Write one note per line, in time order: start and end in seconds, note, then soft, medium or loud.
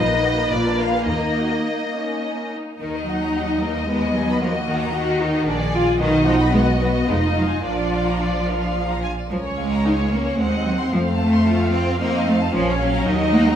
0.00 0.40 A#1 medium
0.00 0.40 A#2 medium
0.00 0.10 A#3 soft
0.00 2.60 A#3 medium
0.00 0.48 D#4 medium
0.00 1.05 B4 medium
0.00 0.51 D#5 medium
0.11 0.24 D#4 soft
0.24 0.38 F#4 soft
0.38 0.52 D#4 soft
0.52 0.96 A#1 soft
0.52 0.96 A#2 medium
0.52 0.65 A#3 soft
0.52 1.09 F4 soft
0.52 0.80 D5 medium
0.66 0.80 D4 soft
0.80 0.94 F4 soft
0.80 1.09 F5 soft
0.94 1.09 G#4 soft
1.08 1.54 D#2 soft
1.08 1.23 A#3 soft
1.08 2.57 D#4 soft
1.08 1.61 A#4 soft
1.08 2.50 D#5 soft
1.23 1.38 D#4 soft
1.39 1.52 F#4 soft
1.53 1.67 D#4 soft
1.67 1.94 A#3 soft
1.96 2.52 C#4 soft
2.54 2.80 D#4 soft
2.80 5.42 D#2 soft
2.80 3.05 D#3 soft
2.80 3.84 D#4 soft
2.80 4.37 D#4 soft
2.80 2.93 A#4 soft
2.80 5.42 D#5 soft
2.95 3.08 D#5 soft
3.07 3.61 F#3 medium
3.07 3.22 F#5 soft
3.23 3.35 A#5 soft
3.36 3.48 F#5 soft
3.50 3.62 D#5 soft
3.61 3.87 A#3 medium
3.61 3.75 A#4 soft
3.76 3.88 D#5 soft
3.87 4.13 G#3 medium
3.87 4.41 B3 soft
3.87 4.00 B4 soft
4.02 4.15 D#5 soft
4.14 4.41 F#3 medium
4.14 4.28 G#5 soft
4.29 4.41 B5 soft
4.41 4.49 F3 medium
4.41 4.94 A#3 soft
4.41 5.44 F#4 soft
4.41 4.54 A#4 soft
4.56 4.68 D#5 soft
4.68 4.93 D#3 medium
4.68 4.81 F#5 soft
4.82 4.94 A#5 soft
4.94 5.72 D#3 medium
4.94 5.20 F#4 medium
4.94 5.07 F#5 soft
5.08 5.20 D#5 soft
5.20 5.46 D#4 medium
5.20 5.33 A#4 soft
5.32 5.46 D#5 soft
5.45 6.00 A#1 medium
5.45 5.55 D4 medium
5.45 5.99 G#4 medium
5.45 5.58 A#4 soft
5.45 6.00 D5 soft
5.60 5.73 D5 soft
5.73 6.00 F4 medium
5.73 5.86 F5 soft
5.87 6.00 G#5 soft
6.00 7.09 B1 medium
6.00 6.25 D#3 medium
6.00 6.53 D#4 medium
6.00 7.07 F#4 soft
6.00 6.12 B4 soft
6.00 7.61 D#5 medium
6.13 6.26 D#5 soft
6.26 6.34 F3 medium
6.26 6.40 F#5 medium
6.39 6.53 B5 soft
6.52 6.61 G#3 medium
6.52 7.09 B3 medium
6.52 6.67 F#5 soft
6.66 6.81 D#5 soft
6.80 6.88 F#3 medium
6.80 6.94 B4 soft
6.94 7.08 D#5 soft
7.08 7.63 F1 soft
7.08 7.17 G#3 medium
7.08 7.64 D#4 medium
7.08 9.10 F4 soft
7.08 7.21 B4 soft
7.21 7.36 D#5 soft
7.36 7.44 F#3 medium
7.36 7.50 F5 soft
7.50 7.64 G#5 soft
7.64 9.08 A#1 soft
7.64 9.00 F3 medium
7.64 9.00 D4 soft
7.64 7.77 A#4 soft
7.64 8.13 D5 soft
7.78 7.92 D5 soft
7.92 8.06 F5 soft
8.06 8.20 A#5 soft
8.19 8.45 D5 soft
8.19 8.34 F5 soft
8.33 8.47 D5 soft
8.47 8.61 A#4 soft
8.47 9.03 F5 soft
8.61 8.75 D5 soft
8.74 8.89 F5 soft
8.89 9.03 A#5 soft
9.01 9.16 F5 soft
9.01 9.10 G#5 soft
9.16 9.30 D5 soft
9.30 10.35 C#2 soft
9.30 9.38 F3 medium
9.30 10.35 C#4 soft
9.30 9.43 A#4 soft
9.30 10.35 C#5 soft
9.45 9.58 C#5 soft
9.58 10.11 G#3 medium
9.58 9.71 F5 soft
9.71 9.85 A#5 soft
9.84 9.93 D#4 soft
9.84 9.98 F5 soft
9.99 10.12 C#5 soft
10.12 10.39 A#3 soft
10.12 10.38 C#4 soft
10.12 10.26 A#4 soft
10.26 10.39 C#5 soft
10.38 10.93 D#2 soft
10.38 10.66 G#3 medium
10.38 10.93 C4 soft
10.38 12.01 C4 soft
10.38 10.52 C5 soft
10.38 10.92 F#5 soft
10.52 10.66 D#5 soft
10.65 10.73 F#3 medium
10.65 10.80 F#5 soft
10.79 10.93 C6 soft
10.92 12.51 F2 medium
10.92 11.01 F3 medium
10.92 11.47 A3 soft
10.92 11.05 C5 soft
10.92 13.07 F5 soft
11.06 11.20 F5 soft
11.19 11.72 A3 medium
11.19 11.33 A5 soft
11.32 11.46 C6 soft
11.46 12.00 F4 medium
11.46 11.60 A5 soft
11.59 11.73 F5 soft
11.72 12.00 C4 medium
11.72 11.86 C5 soft
11.87 12.00 F5 soft
12.00 12.27 A#3 medium
12.00 12.53 C4 medium
12.00 12.54 D#4 medium
12.00 12.13 C5 soft
12.14 12.27 D#5 soft
12.27 12.35 A3 medium
12.27 12.41 F5 soft
12.41 12.54 A5 soft
12.54 13.07 A#1 medium
12.54 12.80 F3 medium
12.54 13.06 C#4 medium
12.54 13.08 C#4 soft
12.54 12.67 A#4 soft
12.68 12.81 C#5 soft
12.81 13.34 F#3 medium
12.81 12.94 F5 soft
12.94 13.08 A#5 soft
13.07 13.56 D#2 medium
13.07 13.56 D#4 medium
13.07 13.56 D#4 soft
13.07 13.20 A#4 soft
13.07 13.56 D#5 soft
13.21 13.35 D#5 soft
13.35 13.49 A#3 medium
13.35 13.49 F#5 soft
13.49 13.56 F#3 medium
13.49 13.56 A#5 soft